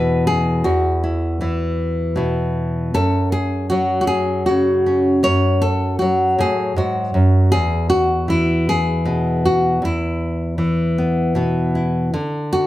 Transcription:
nylon-string guitar
Already playing: E2 B2 E3 B4
0.27 G#4
0.64 E2 F#4
1.04 E4
1.41 E3 E4
2.16 B2 E4
2.94 F#2 A4
3.32 G#4
3.70 F#3 F#4
4.01 F#4
4.07 G#4
4.46 C#3 F#4
4.86 C#4
5.23 F#2 C#5
5.62 A4
5.99 F#3 F#4
6.38 A2 G#4
6.76 G#2 F#4
7.14 F#2
7.52 E2 G#4
7.90 F#4
8.28 E3 E4
8.69 G#4
9.05 B2
9.45 F#4
9.82 E2 E4
10.58 E3
10.98 B3
11.35 B2 B3
11.75 E4
12.14 D3
12.53 F#4

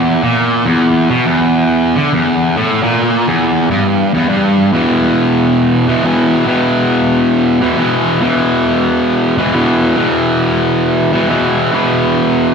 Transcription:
distorted electric guitar
Already playing: E2
0.23 A#2
0.65 E2
1.10 B2
1.26 E2
1.95 D3
2.13 E2
2.56 A2
2.83 A#2
3.27 E2
3.70 G2
4.14 E2
4.29 G2
4.73 E2 B2 E3
5.87 E2 B2 E3
6.04 E2 B2 E3
6.47 E2 B2 E3
7.61 E2 B2 E3
7.78 E2 B2 E3
8.21 E2 B2 E3
9.37 E2 B2 E3
9.54 E2 B2 E3
9.96 E2 B2 E3
11.13 E2 B2 E3
11.28 E2 B2 E3
11.72 E2 B2 E3

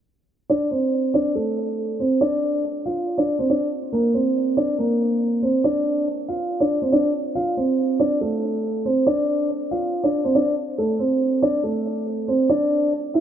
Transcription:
grand piano
0.50 D4 D5
0.71 C4 C5
1.14 D4 D5
1.35 A3 A4
2.00 C4 C5
2.21 D4 D5
2.86 F4 F5
3.18 D4 D5
3.39 C4 C5
3.50 D4 D5
3.93 A#3 A#4
4.14 C4 C5
4.57 D4 D5
4.79 A#3 A#4
5.43 C4 C5
5.64 D4 D5
6.28 F4 F5
6.60 D4 D5
6.82 C4 C5
6.92 D4 D5
7.35 F4 F5
7.57 C4 C5
8.00 D4 D5
8.21 A3 A4
8.86 C4 C5
9.07 D4 D5
9.71 F4 F5
10.04 D4 D5
10.25 C4 C5
10.35 D4 D5
10.78 A3 A4
11.00 C4 C5
11.43 D4 D5
11.64 A3 A4
12.28 C4 C5
12.50 D4 D5
13.14 E4 E5

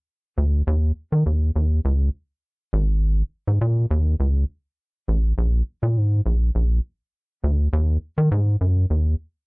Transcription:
analog synth bass
0.38 D2
0.67 D#2
1.12 D#3
1.26 D#2
1.56 D#2
1.85 C#2
2.73 G#1
3.47 G#2
3.61 A#2
3.91 D#2
4.20 C#2
5.08 A1
5.38 A#1
5.83 A#2
5.96 G#2
6.26 A#1
6.55 A#1
7.44 D2
7.73 D#2
8.18 D#3
8.31 G#2
8.61 F#2
8.90 D#2

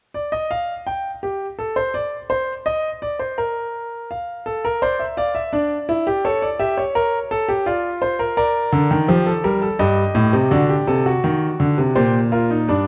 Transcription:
grand piano
0.14 D5
0.32 D#5
0.51 F5
0.87 G5
1.23 G4
1.59 A4
1.76 C5
1.94 D5
2.30 C5
2.66 D#5
3.02 D5
3.19 C5
3.38 A#4
4.11 F5
4.46 A4
4.65 A#4
4.82 C5 D5
4.99 E5
5.17 D5 F5
5.35 E5
5.53 D4 D5
5.89 E4
6.07 G4
6.25 A4 C#5
6.42 D5
6.59 G4 E5
6.78 C#5
6.95 A#4
7.31 A4
7.48 G4
7.66 F4 D5
8.02 C5
8.19 A#4
8.37 A#4 D5
8.72 D3
8.91 D#3
9.08 F3 G4
9.26 A4
9.44 G3 A#4
9.62 A4
9.79 G2 G4 D#5
10.15 A2
10.33 C3
10.51 D3 F#4 D5
10.69 G4
10.87 C3 A4
11.06 F#4
11.24 D#3
11.60 D3
11.78 C3
11.95 A#2 G4 C5
12.32 F4 A#4
12.51 D#4
12.68 G2 D4 D5

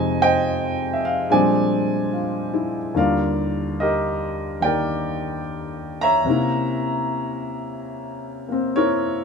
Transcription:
upright piano
Already playing: F2 C3 G#3 D#4 C5 D#5 G#5
0.22 C5 D#5 G5
0.93 E5
1.05 F5
1.30 A#2 F3 G3 G#3 C4 D4 C5 D5 G#5
2.13 F4
2.54 E4
2.94 D#2 D3 G3 F4 A#4 D5 F5
3.80 G4 A#4 D#5
4.60 D#3 A#3 G4 G5
4.64 A#4 D5
6.01 C#5 E5 A#5
6.25 C3 A#3 C#4
6.29 E4
8.49 A#3 C4
8.76 E4 A#4 C#5

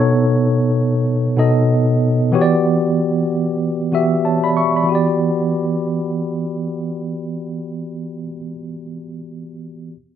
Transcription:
tine electric piano
Already playing: B2 B3 D#4 A4 C#5
1.37 B2 B3 D#4 A4 D#5
2.32 E3 B3 F#4 G4 C#5
2.42 D5
3.92 E3 B3 F#4 G4 E5
4.25 C#5 A5
4.44 D5 B5
4.57 E5 C#6
4.76 D5 B5
4.83 E3 B3
4.89 F#4 G4
4.95 D5

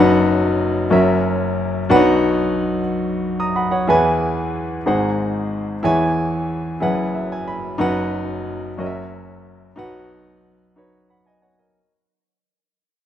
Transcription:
grand piano
Already playing: F#1 F#2 F#4 B4 F#5
0.00 D#4
0.90 F#1 F#2 C#4 F#4 A#4 E5
1.89 B1 B2 D4 F#4 B4 F#5
1.96 D#4
3.40 A#5 D#6
3.56 F#5 B5
3.71 C#5 F#5
3.87 E2 E3 E4 G#4 B4 G#5
4.86 G#1 G#2 D#4 G#4 C5 F#5
5.83 E2 E3 E4 G#4 C#5 G#5
6.80 F#1 F#2 E4 G#4 B4 F#5
7.15 E5
7.32 G#5
7.48 B5
7.78 F#1 F#2 D#4 F#4 B4 F#5
8.78 F#1 F#2 C#4 F#4 A#4 D#5
8.86 E5
9.76 B1 B2 D#4 F#4 B4 F#5
10.76 D#4 F#4 B4 C#5
11.10 F#5 B5
11.26 D#5 G#5
11.42 C#5 F#5 G#5
11.59 A#4 D#5

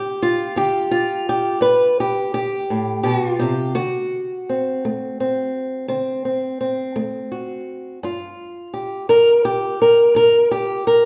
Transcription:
steel-string acoustic guitar
Already playing: G2 G4
0.22 F4
0.56 D3 G4
0.91 F4
1.29 G4
1.61 G2 B4
2.00 G4
2.34 G4
2.70 A2
3.03 B2 F#4
3.30 F4
3.39 C3 G4
3.75 D3 F#4
4.49 C4
4.85 A3
5.20 C4
5.88 D3 C4
6.25 C4
6.61 C4
6.96 A3
7.32 F#4
8.03 G2 F4
8.74 G4
9.09 G2 A#4
9.45 G4
9.82 A#4
10.15 G2 A#4
10.51 G4
10.87 A#4

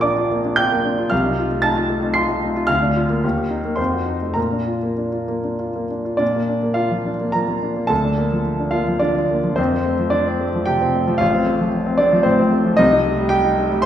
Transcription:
grand piano
Already playing: A#1 A#3 D4 F4 A#4 A#5
0.01 D4 D5 D6
0.18 F4
0.31 A#3
0.45 D4
0.56 F4 G5 G6
0.71 A#3
0.85 D4
0.99 F4
1.10 C2 F5 F6
1.26 D#4
1.38 F4
1.52 A3
1.62 D#4 A5 A6
1.76 F4
1.90 A3
2.03 D#4
2.14 F4 C6 C7
2.29 A3
2.42 D#4
2.56 F4
2.67 D2 F5 F6
2.82 D4
2.96 F4
3.10 A#3
3.24 D#2
3.38 G4
3.51 D#4
3.65 A#3
3.76 F2 C5 C6
3.93 F#4
4.06 D#4
4.22 A3
4.34 A#2 A#4 A#5
4.52 D4
4.67 F4
4.83 A#3
4.98 D4
5.12 F4
5.28 A#3
5.44 D4
5.59 F4
5.76 A#3
5.91 D4
6.05 F4
6.17 A#2 D4 D5
6.35 A#3
6.49 D4
6.63 A#3
6.74 F4 F5
6.91 F3
7.06 D4
7.21 A#3
7.32 F3 A#4 A#5
7.48 A#3
7.63 D4
7.77 A#3
7.87 D2 A4 A5
8.04 D4
8.18 A#3
8.32 F3
8.60 D4
8.71 A#3 F4 F5
8.88 F3
8.99 D3 D4 D5
9.16 D4
9.31 A#3
9.44 F3
9.56 F2 C4 C5
9.72 C4
9.86 A3
9.99 F3
10.10 D4 D5
10.27 C4
10.41 A3
10.55 F3
10.66 C3 G4 G5
10.82 C4
10.95 A3
11.07 F3
11.18 A1 F4 F5
11.34 C4
11.46 A3
11.61 F3
11.86 C4
11.98 A3 D4 D5
12.13 F3
12.23 A2 C4 C5
12.39 C4
12.53 A3
12.66 F3
12.77 C2 D#4 D#5
12.93 D#4
13.06 A3
13.19 G3
13.29 G4 G5
13.45 D#4
13.58 A3
13.71 G3
13.82 C6

